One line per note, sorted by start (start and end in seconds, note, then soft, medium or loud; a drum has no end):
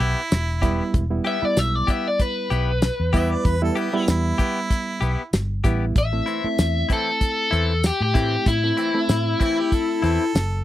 0.00 0.13 B1 medium
0.00 0.21 B3 medium
0.00 1.08 E4 medium
0.00 0.20 E4 medium
0.00 0.20 G4 medium
0.00 closed hi-hat soft
0.32 0.80 E1 medium
0.32 snare loud
0.32 closed hi-hat medium
0.32 tambourine medium
0.62 1.03 G3 medium
0.62 1.03 B3 medium
0.62 0.84 B3 medium
0.62 1.03 E4 medium
0.62 0.83 E4 medium
0.62 0.82 G4 medium
0.62 kick medium
0.62 closed hi-hat medium
0.94 1.18 E1 medium
0.94 kick loud
0.94 closed hi-hat medium
1.10 1.37 G3 medium
1.10 1.37 B3 medium
1.10 1.37 E4 medium
1.25 1.46 B3 medium
1.25 1.46 E4 medium
1.25 1.45 G4 medium
1.25 1.45 E5 medium
1.25 closed hi-hat soft
1.42 2.48 G3 medium
1.42 2.48 B3 medium
1.42 2.48 E4 medium
1.42 1.59 D5 medium
1.42 muted fingered electric bass stroke soft
1.57 1.81 B1 medium
1.57 1.75 E5 medium
1.57 snare medium
1.57 closed hi-hat medium
1.57 tambourine loud
1.75 1.88 D5 medium
1.87 2.09 B3 soft
1.87 2.08 E4 medium
1.87 2.08 G4 medium
1.87 2.07 E5 medium
1.87 kick medium
1.87 closed hi-hat medium
2.07 2.21 D5 medium
2.19 4.04 B4 medium
2.19 kick medium
2.19 closed hi-hat medium
2.50 2.88 B1 medium
2.50 2.72 B3 medium
2.50 2.71 E4 medium
2.50 2.71 G4 medium
2.50 closed hi-hat medium
2.82 snare medium
2.82 closed hi-hat medium
2.82 tambourine medium
3.00 3.34 E2 medium
3.13 3.54 G3 medium
3.13 3.54 B3 medium
3.13 3.34 B3 medium
3.13 3.54 E4 medium
3.13 3.34 E4 medium
3.13 3.33 G4 medium
3.13 3.33 E5 medium
3.13 kick medium
3.13 closed hi-hat medium
3.32 3.48 D5 medium
3.45 3.69 E2 medium
3.45 3.61 B4 medium
3.45 kick loud
3.45 closed hi-hat medium
3.62 3.88 G3 medium
3.62 3.88 B3 medium
3.62 3.88 E4 medium
3.62 3.76 A4 medium
3.75 3.97 B3 medium
3.75 3.96 E4 medium
3.75 3.96 G4 medium
3.75 3.97 G4 medium
3.75 closed hi-hat medium
3.93 4.99 G3 medium
3.93 4.99 B3 medium
3.93 4.99 E4 medium
3.93 4.08 E4 medium
4.08 4.32 E2 medium
4.08 5.30 E4 medium
4.08 snare medium
4.08 closed hi-hat medium
4.08 tambourine loud
4.38 4.60 B3 medium
4.38 4.59 E4 medium
4.38 4.58 G4 medium
4.38 kick medium
4.38 closed hi-hat medium
4.70 kick medium
4.70 closed hi-hat medium
5.01 5.15 B1 medium
5.01 5.22 B3 medium
5.01 5.22 E4 medium
5.01 5.21 G4 medium
5.01 closed hi-hat medium
5.33 5.61 G1 medium
5.33 snare loud
5.33 closed hi-hat medium
5.33 tambourine medium
5.64 5.93 A1 medium
5.64 5.96 G3 medium
5.64 5.96 B3 medium
5.64 5.85 B3 medium
5.64 5.96 E4 medium
5.64 5.85 E4 medium
5.64 5.84 G4 medium
5.64 kick medium
5.64 closed hi-hat medium
5.96 6.20 A1 medium
5.96 6.88 E5 medium
5.96 kick loud
5.96 closed hi-hat medium
6.13 6.39 A3 medium
6.13 6.39 C4 medium
6.13 6.39 E4 medium
6.26 6.48 E3 medium
6.26 6.47 C4 medium
6.26 6.46 E4 medium
6.26 closed hi-hat soft
6.44 7.50 A3 medium
6.44 7.50 C4 medium
6.44 7.50 E4 medium
6.44 muted fingered electric bass stroke soft
6.58 6.83 E2 medium
6.58 snare medium
6.58 closed hi-hat medium
6.58 tambourine loud
6.89 7.10 E3 medium
6.89 7.10 C4 medium
6.89 7.09 E4 medium
6.89 kick medium
6.89 closed hi-hat medium
6.93 7.82 A4 medium
7.21 kick medium
7.21 closed hi-hat medium
7.51 7.90 E2 medium
7.51 7.73 E3 medium
7.51 7.72 C4 medium
7.51 7.72 E4 medium
7.51 closed hi-hat medium
7.84 8.01 G4 medium
7.84 snare medium
7.84 closed hi-hat medium
7.84 tambourine loud
8.01 8.36 A2 medium
8.01 8.46 G4 medium
8.14 8.36 E3 medium
8.14 8.56 A3 medium
8.14 8.35 C4 medium
8.14 8.56 C4 medium
8.14 8.35 E4 medium
8.14 8.56 E4 medium
8.14 kick medium
8.14 closed hi-hat medium
8.46 8.71 A2 medium
8.46 10.31 E4 loud
8.46 kick loud
8.46 closed hi-hat medium
8.64 8.90 A3 medium
8.64 8.90 C4 medium
8.64 8.90 E4 medium
8.77 8.99 E3 medium
8.77 8.98 C4 medium
8.77 8.97 E4 medium
8.77 closed hi-hat medium
8.95 10.00 A3 medium
8.95 10.00 C4 medium
8.95 10.01 E4 medium
9.09 9.33 A2 medium
9.09 snare medium
9.09 closed hi-hat medium
9.09 tambourine loud
9.40 9.61 E3 medium
9.40 9.61 C4 medium
9.40 9.60 E4 medium
9.40 9.61 E4 medium
9.40 kick medium
9.40 closed hi-hat medium
9.60 9.75 G4 medium
9.72 10.03 A4 medium
9.72 kick medium
9.72 closed hi-hat medium
10.02 10.17 E2 medium
10.02 10.24 E3 medium
10.02 10.23 C4 medium
10.02 10.23 E4 medium
10.02 10.64 A4 medium
10.02 closed hi-hat medium
10.35 10.64 F#1 medium
10.35 snare loud
10.35 closed hi-hat medium
10.35 tambourine medium